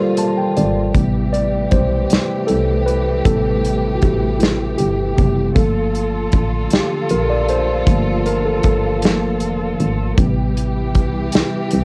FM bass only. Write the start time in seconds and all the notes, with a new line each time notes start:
0.58 G#1
0.96 A1
1.73 B1
2.12 C2
2.50 C2
3.26 A1
4.03 A1
4.80 G1
5.19 F#1
5.57 G1
6.34 A1
7.11 A#1
7.88 G1
8.65 G1
9.42 F1
9.80 G#1
10.19 A1
10.96 B1
11.35 C2
11.73 C2